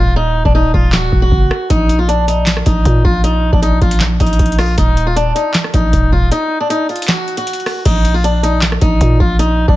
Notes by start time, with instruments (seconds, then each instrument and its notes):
Already playing: 808-style bass D#1, steel-string acoustic guitar F4
0.16 steel-string acoustic guitar D#4
0.45 808-style bass D#1, steel-string acoustic guitar D4, kick
0.55 steel-string acoustic guitar D#4
0.74 808-style bass D#1, steel-string acoustic guitar F4, kick
0.93 steel-string acoustic guitar F#4, snare, clap
1.12 808-style bass D#1, kick
1.22 steel-string acoustic guitar F#4
1.32 808-style bass F#1, kick
1.51 cross-stick
1.70 808-style bass A#1, steel-string acoustic guitar D#4, kick, closed hi-hat
1.89 closed hi-hat
1.99 steel-string acoustic guitar F4
2.08 steel-string acoustic guitar D4, closed hi-hat
2.28 steel-string acoustic guitar D#4, closed hi-hat
2.47 snare, clap, closed hi-hat
2.57 cross-stick
2.66 808-style bass A#1, steel-string acoustic guitar D#4, kick, closed hi-hat
2.85 808-style bass A#2, kick, closed hi-hat
3.05 808-style bass A#1, steel-string acoustic guitar F4, kick
3.24 steel-string acoustic guitar D#4, closed hi-hat
3.53 808-style bass A#1, steel-string acoustic guitar D4, kick
3.62 steel-string acoustic guitar D#4, closed hi-hat
3.82 808-style bass A#1, steel-string acoustic guitar F4, kick, closed hi-hat
3.91 closed hi-hat
4.00 snare, clap, closed hi-hat
4.20 808-style bass A#1, steel-string acoustic guitar D#4, kick, closed hi-hat
4.26 closed hi-hat
4.33 closed hi-hat
4.39 808-style bass A#1, kick, closed hi-hat
4.46 closed hi-hat
4.52 closed hi-hat
4.58 steel-string acoustic guitar F4, cross-stick, open hi-hat
4.78 808-style bass D#1, steel-string acoustic guitar D#4, kick, closed hi-hat
4.97 closed hi-hat
5.07 steel-string acoustic guitar F4
5.16 steel-string acoustic guitar D4, closed hi-hat
5.35 steel-string acoustic guitar D#4, closed hi-hat
5.54 snare, clap, closed hi-hat
5.64 cross-stick
5.74 808-style bass A#1, steel-string acoustic guitar D#4, kick, closed hi-hat
5.93 808-style bass D#1, kick, closed hi-hat
6.12 808-style bass D#1, steel-string acoustic guitar F4, kick
6.32 steel-string acoustic guitar D#4, closed hi-hat
6.60 steel-string acoustic guitar D4
6.70 steel-string acoustic guitar D#4, closed hi-hat
6.89 closed hi-hat
6.96 closed hi-hat
7.02 closed hi-hat
7.08 steel-string acoustic guitar F#4, snare, clap, closed hi-hat
7.28 closed hi-hat
7.37 steel-string acoustic guitar F#4, closed hi-hat
7.47 closed hi-hat
7.53 closed hi-hat
7.60 closed hi-hat
7.66 cross-stick, open hi-hat
7.85 808-style bass A#1, steel-string acoustic guitar D#4, kick, closed hi-hat, crash
8.05 closed hi-hat
8.14 steel-string acoustic guitar F4
8.24 steel-string acoustic guitar D4, closed hi-hat
8.43 steel-string acoustic guitar D#4, closed hi-hat
8.62 snare, clap, closed hi-hat
8.72 cross-stick
8.81 808-style bass A#1, steel-string acoustic guitar D#4, kick, closed hi-hat
9.01 808-style bass A#2, kick, closed hi-hat
9.20 808-style bass A#1, steel-string acoustic guitar F4, kick
9.39 steel-string acoustic guitar D#4, closed hi-hat
9.68 808-style bass A#1, steel-string acoustic guitar D4, kick